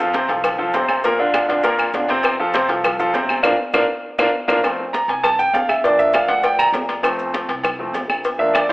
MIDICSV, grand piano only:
0, 0, Header, 1, 2, 480
1, 0, Start_track
1, 0, Key_signature, -1, "major"
1, 0, Tempo, 300300
1, 1662, Time_signature, 4, 2, 24, 8
1, 13948, End_track
2, 0, Start_track
2, 0, Title_t, "Grand piano"
2, 0, Program_c, 0, 0
2, 0, Note_on_c, 0, 53, 85
2, 0, Note_on_c, 0, 65, 85
2, 0, Note_on_c, 0, 69, 85
2, 187, Note_off_c, 0, 65, 0
2, 188, Note_off_c, 0, 53, 0
2, 191, Note_off_c, 0, 69, 0
2, 230, Note_on_c, 0, 48, 83
2, 233, Note_on_c, 0, 60, 84
2, 240, Note_on_c, 0, 72, 90
2, 425, Note_off_c, 0, 48, 0
2, 427, Note_off_c, 0, 60, 0
2, 431, Note_off_c, 0, 72, 0
2, 468, Note_on_c, 0, 53, 72
2, 472, Note_on_c, 0, 65, 68
2, 478, Note_on_c, 0, 69, 68
2, 859, Note_off_c, 0, 53, 0
2, 862, Note_off_c, 0, 65, 0
2, 865, Note_off_c, 0, 69, 0
2, 933, Note_on_c, 0, 53, 83
2, 941, Note_on_c, 0, 65, 84
2, 942, Note_on_c, 0, 69, 79
2, 1134, Note_off_c, 0, 53, 0
2, 1139, Note_off_c, 0, 65, 0
2, 1139, Note_off_c, 0, 69, 0
2, 1177, Note_on_c, 0, 48, 81
2, 1183, Note_on_c, 0, 60, 80
2, 1189, Note_on_c, 0, 72, 79
2, 1572, Note_off_c, 0, 48, 0
2, 1575, Note_off_c, 0, 60, 0
2, 1579, Note_off_c, 0, 72, 0
2, 1671, Note_on_c, 0, 46, 83
2, 1677, Note_on_c, 0, 58, 81
2, 1679, Note_on_c, 0, 70, 88
2, 1863, Note_off_c, 0, 46, 0
2, 1867, Note_off_c, 0, 58, 0
2, 1868, Note_off_c, 0, 70, 0
2, 1902, Note_on_c, 0, 50, 84
2, 1909, Note_on_c, 0, 62, 83
2, 1915, Note_on_c, 0, 65, 84
2, 2294, Note_off_c, 0, 50, 0
2, 2298, Note_off_c, 0, 62, 0
2, 2302, Note_off_c, 0, 65, 0
2, 2373, Note_on_c, 0, 50, 77
2, 2375, Note_on_c, 0, 62, 81
2, 2386, Note_on_c, 0, 65, 69
2, 2572, Note_off_c, 0, 50, 0
2, 2573, Note_off_c, 0, 62, 0
2, 2580, Note_off_c, 0, 65, 0
2, 2610, Note_on_c, 0, 46, 92
2, 2616, Note_on_c, 0, 58, 91
2, 2625, Note_on_c, 0, 70, 88
2, 3006, Note_off_c, 0, 46, 0
2, 3010, Note_off_c, 0, 58, 0
2, 3015, Note_off_c, 0, 70, 0
2, 3103, Note_on_c, 0, 50, 65
2, 3105, Note_on_c, 0, 62, 74
2, 3115, Note_on_c, 0, 65, 75
2, 3297, Note_off_c, 0, 50, 0
2, 3298, Note_off_c, 0, 62, 0
2, 3304, Note_off_c, 0, 65, 0
2, 3349, Note_on_c, 0, 48, 84
2, 3353, Note_on_c, 0, 60, 95
2, 3360, Note_on_c, 0, 72, 85
2, 3737, Note_off_c, 0, 48, 0
2, 3739, Note_off_c, 0, 60, 0
2, 3743, Note_off_c, 0, 72, 0
2, 3828, Note_on_c, 0, 53, 87
2, 3831, Note_on_c, 0, 65, 78
2, 3837, Note_on_c, 0, 69, 85
2, 4020, Note_off_c, 0, 53, 0
2, 4021, Note_off_c, 0, 65, 0
2, 4025, Note_off_c, 0, 69, 0
2, 4059, Note_on_c, 0, 48, 90
2, 4064, Note_on_c, 0, 60, 81
2, 4067, Note_on_c, 0, 72, 93
2, 4254, Note_off_c, 0, 48, 0
2, 4257, Note_off_c, 0, 60, 0
2, 4259, Note_off_c, 0, 72, 0
2, 4303, Note_on_c, 0, 53, 76
2, 4311, Note_on_c, 0, 65, 72
2, 4312, Note_on_c, 0, 69, 72
2, 4692, Note_off_c, 0, 53, 0
2, 4697, Note_off_c, 0, 65, 0
2, 4698, Note_off_c, 0, 69, 0
2, 4784, Note_on_c, 0, 53, 84
2, 4787, Note_on_c, 0, 65, 81
2, 4791, Note_on_c, 0, 69, 90
2, 4976, Note_off_c, 0, 53, 0
2, 4978, Note_off_c, 0, 65, 0
2, 4980, Note_off_c, 0, 69, 0
2, 5011, Note_on_c, 0, 48, 79
2, 5017, Note_on_c, 0, 60, 87
2, 5024, Note_on_c, 0, 72, 77
2, 5405, Note_off_c, 0, 48, 0
2, 5409, Note_off_c, 0, 60, 0
2, 5413, Note_off_c, 0, 72, 0
2, 5479, Note_on_c, 0, 62, 100
2, 5483, Note_on_c, 0, 65, 91
2, 5484, Note_on_c, 0, 58, 97
2, 5638, Note_off_c, 0, 62, 0
2, 5641, Note_off_c, 0, 58, 0
2, 5641, Note_off_c, 0, 65, 0
2, 5971, Note_on_c, 0, 65, 101
2, 5973, Note_on_c, 0, 58, 104
2, 5975, Note_on_c, 0, 62, 101
2, 6125, Note_off_c, 0, 65, 0
2, 6127, Note_off_c, 0, 58, 0
2, 6128, Note_off_c, 0, 62, 0
2, 6690, Note_on_c, 0, 62, 102
2, 6691, Note_on_c, 0, 65, 110
2, 6695, Note_on_c, 0, 58, 109
2, 6844, Note_off_c, 0, 62, 0
2, 6845, Note_off_c, 0, 65, 0
2, 6848, Note_off_c, 0, 58, 0
2, 7158, Note_on_c, 0, 65, 92
2, 7159, Note_on_c, 0, 62, 82
2, 7161, Note_on_c, 0, 58, 99
2, 7317, Note_off_c, 0, 65, 0
2, 7318, Note_off_c, 0, 62, 0
2, 7319, Note_off_c, 0, 58, 0
2, 7386, Note_on_c, 0, 53, 56
2, 7399, Note_on_c, 0, 57, 52
2, 7408, Note_on_c, 0, 60, 66
2, 7718, Note_off_c, 0, 53, 0
2, 7725, Note_off_c, 0, 57, 0
2, 7730, Note_off_c, 0, 60, 0
2, 7883, Note_on_c, 0, 82, 89
2, 8121, Note_off_c, 0, 82, 0
2, 8140, Note_on_c, 0, 80, 77
2, 8367, Note_on_c, 0, 81, 107
2, 8370, Note_off_c, 0, 80, 0
2, 8603, Note_off_c, 0, 81, 0
2, 8616, Note_on_c, 0, 79, 92
2, 8848, Note_off_c, 0, 79, 0
2, 8848, Note_on_c, 0, 77, 80
2, 9084, Note_off_c, 0, 77, 0
2, 9093, Note_on_c, 0, 76, 73
2, 9327, Note_off_c, 0, 76, 0
2, 9336, Note_on_c, 0, 53, 56
2, 9342, Note_on_c, 0, 58, 50
2, 9345, Note_on_c, 0, 74, 76
2, 9352, Note_on_c, 0, 62, 67
2, 9573, Note_off_c, 0, 74, 0
2, 9574, Note_on_c, 0, 76, 84
2, 9808, Note_off_c, 0, 76, 0
2, 9809, Note_on_c, 0, 77, 85
2, 10045, Note_on_c, 0, 78, 78
2, 10046, Note_off_c, 0, 77, 0
2, 10283, Note_off_c, 0, 78, 0
2, 10295, Note_on_c, 0, 79, 84
2, 10529, Note_off_c, 0, 79, 0
2, 10530, Note_on_c, 0, 82, 112
2, 10677, Note_off_c, 0, 82, 0
2, 11196, Note_off_c, 0, 53, 0
2, 11199, Note_off_c, 0, 58, 0
2, 11204, Note_off_c, 0, 62, 0
2, 11233, Note_on_c, 0, 53, 55
2, 11246, Note_on_c, 0, 57, 59
2, 11256, Note_on_c, 0, 60, 61
2, 11931, Note_off_c, 0, 53, 0
2, 11938, Note_off_c, 0, 57, 0
2, 11943, Note_off_c, 0, 60, 0
2, 12450, Note_on_c, 0, 53, 54
2, 12452, Note_on_c, 0, 57, 51
2, 12465, Note_on_c, 0, 60, 59
2, 12672, Note_off_c, 0, 53, 0
2, 12673, Note_off_c, 0, 57, 0
2, 12680, Note_off_c, 0, 60, 0
2, 13402, Note_on_c, 0, 53, 60
2, 13413, Note_on_c, 0, 58, 58
2, 13413, Note_on_c, 0, 76, 86
2, 13422, Note_on_c, 0, 62, 66
2, 13646, Note_on_c, 0, 74, 74
2, 13653, Note_off_c, 0, 76, 0
2, 13733, Note_off_c, 0, 53, 0
2, 13739, Note_off_c, 0, 58, 0
2, 13744, Note_off_c, 0, 62, 0
2, 13889, Note_off_c, 0, 74, 0
2, 13894, Note_on_c, 0, 72, 77
2, 13948, Note_off_c, 0, 72, 0
2, 13948, End_track
0, 0, End_of_file